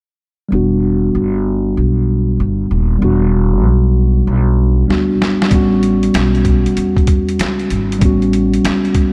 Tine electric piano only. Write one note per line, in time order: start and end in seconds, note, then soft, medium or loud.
0.49 2.96 G3 medium
0.49 2.97 B3 medium
0.53 2.98 D4 medium
0.53 2.99 F#4 medium
2.98 4.84 G3 medium
2.98 4.85 B3 medium
3.03 4.86 D4 medium
3.03 4.87 F#4 medium
4.88 5.47 G3 medium
4.88 5.49 B3 soft
4.88 5.52 D4 soft
4.88 5.52 F#4 soft
5.48 7.96 G3 medium
5.48 7.97 B3 medium
5.53 7.98 C#4 medium
5.53 7.99 F#4 medium
7.99 9.13 G3 medium
7.99 9.13 B3 medium
8.03 9.13 C#4 medium
8.03 9.13 F#4 medium